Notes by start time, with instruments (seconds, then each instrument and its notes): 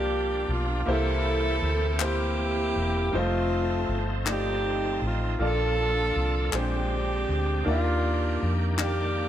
Already playing: fingered electric bass C2, grand piano A#2 A#3 F4 G4 D5, tonewheel organ F3 A#3 D4 G4, saxophone section D4 G4
0.49 fingered electric bass B1, saxophone section F4
0.85 fingered electric bass C2, grand piano C3 A#3 E4 G4 C5, tonewheel organ E3 A#3 C4 G4, saxophone section A4
0.90 saxophone section E4
1.62 fingered electric bass D2
1.98 grand piano A#3 E4 G4 C5, saxophone section G4, clap
2.03 saxophone section A#3 E4
2.76 fingered electric bass E1
3.12 fingered electric bass F1, tonewheel organ F3 C4 D#4 A4, grand piano G3 D#4 F4 C5
3.16 saxophone section A3 C4 F4, grand piano A3
3.89 fingered electric bass G1
4.25 grand piano A3 D#4 F4 D5, clap
4.30 saxophone section C4 D#4 G4
5.02 fingered electric bass A1, saxophone section F4
5.38 fingered electric bass A#1, grand piano A#2 A#3 F4 A4 D5, tonewheel organ F3 A#3 D4 A4
5.43 saxophone section D4 F4 A4
6.16 fingered electric bass C2
6.51 fingered electric bass A#1, grand piano A#2 G#3 D4 G4 C5, tonewheel organ C#3 G#3 C4 G4, clap
6.56 saxophone section C4 D4 G4
6.61 tonewheel organ D3
7.29 fingered electric bass D2
7.64 fingered electric bass D#2, tonewheel organ D#3 A#3 D4 G4, grand piano D#3 A#3 D4 F#4 D5, saxophone section A#3
7.69 saxophone section D4 F4
7.73 grand piano G4
8.43 fingered electric bass F2
8.77 grand piano D#3 A#3 G4 D5, clap
8.82 saxophone section A#3 D4 G4